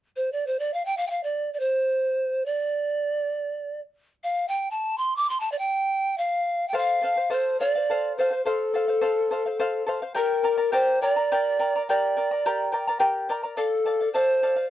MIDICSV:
0, 0, Header, 1, 3, 480
1, 0, Start_track
1, 0, Tempo, 567644
1, 1379, Time_signature, 6, 3, 24, 8
1, 12430, End_track
2, 0, Start_track
2, 0, Title_t, "Charango"
2, 0, Program_c, 0, 24
2, 5689, Note_on_c, 0, 69, 59
2, 5698, Note_on_c, 0, 77, 64
2, 5701, Note_on_c, 0, 72, 72
2, 5925, Note_off_c, 0, 69, 0
2, 5935, Note_on_c, 0, 69, 48
2, 5939, Note_off_c, 0, 72, 0
2, 5943, Note_off_c, 0, 77, 0
2, 5949, Note_on_c, 0, 72, 45
2, 5953, Note_on_c, 0, 77, 53
2, 6045, Note_off_c, 0, 77, 0
2, 6052, Note_off_c, 0, 72, 0
2, 6055, Note_on_c, 0, 77, 41
2, 6061, Note_off_c, 0, 69, 0
2, 6065, Note_on_c, 0, 72, 36
2, 6167, Note_off_c, 0, 72, 0
2, 6169, Note_off_c, 0, 77, 0
2, 6171, Note_on_c, 0, 69, 61
2, 6177, Note_on_c, 0, 72, 70
2, 6179, Note_on_c, 0, 77, 64
2, 6417, Note_off_c, 0, 69, 0
2, 6423, Note_off_c, 0, 72, 0
2, 6424, Note_off_c, 0, 77, 0
2, 6427, Note_on_c, 0, 69, 51
2, 6435, Note_on_c, 0, 77, 50
2, 6440, Note_on_c, 0, 72, 55
2, 6545, Note_off_c, 0, 77, 0
2, 6547, Note_off_c, 0, 69, 0
2, 6552, Note_off_c, 0, 72, 0
2, 6555, Note_on_c, 0, 77, 47
2, 6570, Note_on_c, 0, 72, 39
2, 6672, Note_off_c, 0, 77, 0
2, 6677, Note_off_c, 0, 72, 0
2, 6678, Note_on_c, 0, 69, 58
2, 6686, Note_on_c, 0, 77, 70
2, 6688, Note_on_c, 0, 72, 69
2, 6913, Note_off_c, 0, 69, 0
2, 6917, Note_off_c, 0, 77, 0
2, 6918, Note_off_c, 0, 72, 0
2, 6923, Note_on_c, 0, 69, 53
2, 6928, Note_on_c, 0, 72, 57
2, 6936, Note_on_c, 0, 77, 58
2, 7013, Note_off_c, 0, 77, 0
2, 7019, Note_off_c, 0, 72, 0
2, 7023, Note_on_c, 0, 77, 44
2, 7036, Note_off_c, 0, 69, 0
2, 7038, Note_on_c, 0, 72, 38
2, 7146, Note_off_c, 0, 72, 0
2, 7146, Note_off_c, 0, 77, 0
2, 7149, Note_on_c, 0, 69, 60
2, 7156, Note_on_c, 0, 72, 71
2, 7158, Note_on_c, 0, 77, 69
2, 7379, Note_off_c, 0, 69, 0
2, 7389, Note_off_c, 0, 72, 0
2, 7389, Note_on_c, 0, 69, 47
2, 7393, Note_off_c, 0, 77, 0
2, 7399, Note_on_c, 0, 72, 51
2, 7404, Note_on_c, 0, 77, 45
2, 7497, Note_off_c, 0, 77, 0
2, 7503, Note_off_c, 0, 72, 0
2, 7507, Note_on_c, 0, 77, 45
2, 7509, Note_off_c, 0, 69, 0
2, 7519, Note_on_c, 0, 72, 37
2, 7613, Note_off_c, 0, 72, 0
2, 7619, Note_off_c, 0, 77, 0
2, 7622, Note_on_c, 0, 69, 66
2, 7623, Note_on_c, 0, 72, 68
2, 7633, Note_on_c, 0, 77, 66
2, 7860, Note_off_c, 0, 69, 0
2, 7866, Note_off_c, 0, 72, 0
2, 7871, Note_off_c, 0, 77, 0
2, 7871, Note_on_c, 0, 69, 56
2, 7877, Note_on_c, 0, 72, 58
2, 7886, Note_on_c, 0, 77, 60
2, 7988, Note_off_c, 0, 77, 0
2, 7989, Note_off_c, 0, 69, 0
2, 7992, Note_off_c, 0, 72, 0
2, 7998, Note_on_c, 0, 77, 49
2, 8009, Note_on_c, 0, 72, 42
2, 8104, Note_off_c, 0, 72, 0
2, 8110, Note_off_c, 0, 77, 0
2, 8114, Note_on_c, 0, 69, 73
2, 8114, Note_on_c, 0, 72, 83
2, 8123, Note_on_c, 0, 77, 86
2, 8332, Note_off_c, 0, 69, 0
2, 8342, Note_on_c, 0, 69, 63
2, 8344, Note_off_c, 0, 72, 0
2, 8349, Note_off_c, 0, 77, 0
2, 8354, Note_on_c, 0, 72, 63
2, 8359, Note_on_c, 0, 77, 67
2, 8463, Note_off_c, 0, 77, 0
2, 8465, Note_off_c, 0, 69, 0
2, 8467, Note_off_c, 0, 72, 0
2, 8473, Note_on_c, 0, 77, 46
2, 8477, Note_on_c, 0, 72, 36
2, 8576, Note_off_c, 0, 72, 0
2, 8576, Note_off_c, 0, 77, 0
2, 8579, Note_on_c, 0, 67, 68
2, 8579, Note_on_c, 0, 79, 64
2, 8584, Note_on_c, 0, 74, 64
2, 8588, Note_on_c, 0, 70, 69
2, 8588, Note_on_c, 0, 82, 76
2, 8812, Note_off_c, 0, 79, 0
2, 8817, Note_off_c, 0, 70, 0
2, 8819, Note_off_c, 0, 82, 0
2, 8821, Note_off_c, 0, 74, 0
2, 8822, Note_on_c, 0, 79, 47
2, 8823, Note_off_c, 0, 67, 0
2, 8827, Note_on_c, 0, 70, 47
2, 8830, Note_on_c, 0, 82, 56
2, 8831, Note_on_c, 0, 74, 53
2, 8932, Note_off_c, 0, 74, 0
2, 8932, Note_off_c, 0, 82, 0
2, 8940, Note_off_c, 0, 70, 0
2, 8942, Note_on_c, 0, 74, 41
2, 8942, Note_on_c, 0, 82, 40
2, 8945, Note_off_c, 0, 79, 0
2, 8951, Note_on_c, 0, 70, 37
2, 9057, Note_off_c, 0, 70, 0
2, 9061, Note_off_c, 0, 82, 0
2, 9064, Note_on_c, 0, 67, 67
2, 9065, Note_off_c, 0, 74, 0
2, 9067, Note_on_c, 0, 70, 69
2, 9071, Note_on_c, 0, 79, 62
2, 9071, Note_on_c, 0, 82, 69
2, 9073, Note_on_c, 0, 74, 68
2, 9305, Note_off_c, 0, 79, 0
2, 9306, Note_off_c, 0, 67, 0
2, 9307, Note_off_c, 0, 70, 0
2, 9309, Note_off_c, 0, 82, 0
2, 9310, Note_off_c, 0, 74, 0
2, 9315, Note_on_c, 0, 79, 50
2, 9319, Note_on_c, 0, 70, 54
2, 9321, Note_on_c, 0, 74, 55
2, 9326, Note_on_c, 0, 82, 49
2, 9429, Note_off_c, 0, 74, 0
2, 9430, Note_off_c, 0, 82, 0
2, 9431, Note_off_c, 0, 79, 0
2, 9433, Note_off_c, 0, 70, 0
2, 9439, Note_on_c, 0, 74, 41
2, 9440, Note_on_c, 0, 82, 42
2, 9450, Note_on_c, 0, 70, 36
2, 9553, Note_off_c, 0, 74, 0
2, 9553, Note_off_c, 0, 82, 0
2, 9558, Note_off_c, 0, 70, 0
2, 9569, Note_on_c, 0, 67, 66
2, 9571, Note_on_c, 0, 74, 66
2, 9571, Note_on_c, 0, 82, 76
2, 9573, Note_on_c, 0, 70, 69
2, 9573, Note_on_c, 0, 79, 64
2, 9793, Note_off_c, 0, 79, 0
2, 9794, Note_off_c, 0, 70, 0
2, 9797, Note_off_c, 0, 67, 0
2, 9798, Note_off_c, 0, 74, 0
2, 9798, Note_off_c, 0, 82, 0
2, 9804, Note_on_c, 0, 70, 54
2, 9804, Note_on_c, 0, 79, 49
2, 9810, Note_on_c, 0, 74, 52
2, 9812, Note_on_c, 0, 82, 58
2, 9915, Note_off_c, 0, 70, 0
2, 9915, Note_off_c, 0, 79, 0
2, 9918, Note_off_c, 0, 74, 0
2, 9919, Note_off_c, 0, 82, 0
2, 9939, Note_on_c, 0, 74, 43
2, 9943, Note_on_c, 0, 82, 42
2, 9952, Note_on_c, 0, 70, 34
2, 10042, Note_off_c, 0, 74, 0
2, 10044, Note_off_c, 0, 82, 0
2, 10049, Note_off_c, 0, 70, 0
2, 10055, Note_on_c, 0, 79, 65
2, 10060, Note_on_c, 0, 67, 68
2, 10060, Note_on_c, 0, 70, 71
2, 10063, Note_on_c, 0, 74, 67
2, 10069, Note_on_c, 0, 82, 74
2, 10278, Note_off_c, 0, 70, 0
2, 10278, Note_off_c, 0, 79, 0
2, 10282, Note_off_c, 0, 67, 0
2, 10284, Note_off_c, 0, 74, 0
2, 10287, Note_off_c, 0, 82, 0
2, 10288, Note_on_c, 0, 70, 47
2, 10288, Note_on_c, 0, 79, 50
2, 10297, Note_on_c, 0, 74, 48
2, 10302, Note_on_c, 0, 82, 53
2, 10396, Note_off_c, 0, 70, 0
2, 10396, Note_off_c, 0, 79, 0
2, 10401, Note_off_c, 0, 74, 0
2, 10401, Note_off_c, 0, 82, 0
2, 10411, Note_on_c, 0, 82, 45
2, 10418, Note_on_c, 0, 74, 41
2, 10425, Note_on_c, 0, 70, 33
2, 10517, Note_off_c, 0, 82, 0
2, 10521, Note_off_c, 0, 74, 0
2, 10525, Note_off_c, 0, 70, 0
2, 10534, Note_on_c, 0, 67, 58
2, 10534, Note_on_c, 0, 70, 64
2, 10536, Note_on_c, 0, 74, 67
2, 10536, Note_on_c, 0, 79, 63
2, 10539, Note_on_c, 0, 82, 70
2, 10746, Note_off_c, 0, 79, 0
2, 10751, Note_off_c, 0, 70, 0
2, 10756, Note_on_c, 0, 79, 50
2, 10758, Note_off_c, 0, 67, 0
2, 10758, Note_off_c, 0, 82, 0
2, 10759, Note_off_c, 0, 74, 0
2, 10761, Note_on_c, 0, 70, 52
2, 10768, Note_on_c, 0, 82, 62
2, 10769, Note_on_c, 0, 74, 55
2, 10869, Note_off_c, 0, 79, 0
2, 10872, Note_off_c, 0, 70, 0
2, 10876, Note_off_c, 0, 74, 0
2, 10876, Note_off_c, 0, 82, 0
2, 10887, Note_on_c, 0, 82, 47
2, 10896, Note_on_c, 0, 74, 49
2, 10904, Note_on_c, 0, 70, 42
2, 10981, Note_off_c, 0, 70, 0
2, 10983, Note_off_c, 0, 82, 0
2, 10985, Note_off_c, 0, 74, 0
2, 10988, Note_on_c, 0, 79, 69
2, 10991, Note_on_c, 0, 70, 70
2, 10992, Note_on_c, 0, 67, 67
2, 10993, Note_on_c, 0, 82, 80
2, 10995, Note_on_c, 0, 74, 72
2, 11224, Note_off_c, 0, 79, 0
2, 11226, Note_off_c, 0, 67, 0
2, 11226, Note_off_c, 0, 70, 0
2, 11227, Note_off_c, 0, 82, 0
2, 11228, Note_off_c, 0, 74, 0
2, 11239, Note_on_c, 0, 79, 61
2, 11243, Note_on_c, 0, 70, 62
2, 11244, Note_on_c, 0, 74, 56
2, 11256, Note_on_c, 0, 82, 67
2, 11350, Note_off_c, 0, 79, 0
2, 11350, Note_off_c, 0, 82, 0
2, 11352, Note_off_c, 0, 70, 0
2, 11352, Note_off_c, 0, 74, 0
2, 11361, Note_on_c, 0, 82, 42
2, 11367, Note_on_c, 0, 74, 37
2, 11373, Note_on_c, 0, 70, 33
2, 11466, Note_off_c, 0, 74, 0
2, 11471, Note_off_c, 0, 82, 0
2, 11474, Note_off_c, 0, 70, 0
2, 11476, Note_on_c, 0, 74, 69
2, 11478, Note_on_c, 0, 69, 63
2, 11481, Note_on_c, 0, 77, 73
2, 11706, Note_off_c, 0, 69, 0
2, 11707, Note_off_c, 0, 74, 0
2, 11710, Note_off_c, 0, 77, 0
2, 11716, Note_on_c, 0, 69, 44
2, 11722, Note_on_c, 0, 74, 49
2, 11727, Note_on_c, 0, 77, 52
2, 11827, Note_off_c, 0, 69, 0
2, 11830, Note_off_c, 0, 74, 0
2, 11833, Note_off_c, 0, 77, 0
2, 11843, Note_on_c, 0, 77, 43
2, 11852, Note_on_c, 0, 74, 36
2, 11951, Note_off_c, 0, 77, 0
2, 11953, Note_off_c, 0, 74, 0
2, 11960, Note_on_c, 0, 69, 63
2, 11963, Note_on_c, 0, 74, 61
2, 11969, Note_on_c, 0, 77, 65
2, 12188, Note_off_c, 0, 69, 0
2, 12190, Note_off_c, 0, 74, 0
2, 12193, Note_off_c, 0, 77, 0
2, 12199, Note_on_c, 0, 69, 46
2, 12202, Note_on_c, 0, 74, 53
2, 12203, Note_on_c, 0, 77, 54
2, 12301, Note_off_c, 0, 77, 0
2, 12307, Note_off_c, 0, 74, 0
2, 12308, Note_off_c, 0, 69, 0
2, 12311, Note_on_c, 0, 77, 46
2, 12317, Note_on_c, 0, 74, 39
2, 12423, Note_off_c, 0, 77, 0
2, 12426, Note_off_c, 0, 74, 0
2, 12430, End_track
3, 0, Start_track
3, 0, Title_t, "Pan flute"
3, 0, Program_c, 1, 75
3, 137, Note_on_c, 1, 72, 58
3, 267, Note_off_c, 1, 72, 0
3, 272, Note_on_c, 1, 74, 66
3, 394, Note_on_c, 1, 72, 60
3, 407, Note_off_c, 1, 74, 0
3, 501, Note_on_c, 1, 74, 64
3, 514, Note_off_c, 1, 72, 0
3, 622, Note_on_c, 1, 77, 71
3, 635, Note_off_c, 1, 74, 0
3, 716, Note_off_c, 1, 77, 0
3, 721, Note_on_c, 1, 79, 79
3, 822, Note_on_c, 1, 77, 65
3, 834, Note_off_c, 1, 79, 0
3, 901, Note_off_c, 1, 77, 0
3, 906, Note_on_c, 1, 79, 50
3, 920, Note_on_c, 1, 77, 68
3, 933, Note_off_c, 1, 79, 0
3, 1038, Note_off_c, 1, 77, 0
3, 1043, Note_on_c, 1, 74, 60
3, 1285, Note_off_c, 1, 74, 0
3, 1297, Note_on_c, 1, 74, 51
3, 1349, Note_on_c, 1, 72, 68
3, 1362, Note_off_c, 1, 74, 0
3, 2076, Note_on_c, 1, 74, 73
3, 2088, Note_off_c, 1, 72, 0
3, 3213, Note_off_c, 1, 74, 0
3, 3581, Note_on_c, 1, 77, 70
3, 3789, Note_on_c, 1, 79, 62
3, 3802, Note_off_c, 1, 77, 0
3, 3979, Note_on_c, 1, 81, 64
3, 3992, Note_off_c, 1, 79, 0
3, 4208, Note_on_c, 1, 84, 72
3, 4220, Note_off_c, 1, 81, 0
3, 4361, Note_off_c, 1, 84, 0
3, 4366, Note_on_c, 1, 86, 75
3, 4476, Note_on_c, 1, 84, 68
3, 4489, Note_off_c, 1, 86, 0
3, 4568, Note_on_c, 1, 81, 71
3, 4580, Note_off_c, 1, 84, 0
3, 4660, Note_off_c, 1, 81, 0
3, 4665, Note_on_c, 1, 74, 57
3, 4717, Note_off_c, 1, 74, 0
3, 4722, Note_on_c, 1, 79, 74
3, 5223, Note_on_c, 1, 77, 76
3, 5236, Note_off_c, 1, 79, 0
3, 5643, Note_off_c, 1, 77, 0
3, 5651, Note_on_c, 1, 79, 55
3, 5723, Note_on_c, 1, 77, 88
3, 5735, Note_off_c, 1, 79, 0
3, 6186, Note_on_c, 1, 72, 72
3, 6199, Note_off_c, 1, 77, 0
3, 6418, Note_off_c, 1, 72, 0
3, 6423, Note_on_c, 1, 74, 86
3, 6872, Note_off_c, 1, 74, 0
3, 6914, Note_on_c, 1, 72, 70
3, 7134, Note_off_c, 1, 72, 0
3, 7146, Note_on_c, 1, 69, 76
3, 8313, Note_off_c, 1, 69, 0
3, 8596, Note_on_c, 1, 70, 82
3, 9072, Note_on_c, 1, 72, 80
3, 9085, Note_off_c, 1, 70, 0
3, 9309, Note_off_c, 1, 72, 0
3, 9318, Note_on_c, 1, 74, 97
3, 9997, Note_off_c, 1, 74, 0
3, 10053, Note_on_c, 1, 74, 75
3, 10724, Note_off_c, 1, 74, 0
3, 11475, Note_on_c, 1, 69, 70
3, 11913, Note_off_c, 1, 69, 0
3, 11953, Note_on_c, 1, 72, 85
3, 12391, Note_off_c, 1, 72, 0
3, 12430, End_track
0, 0, End_of_file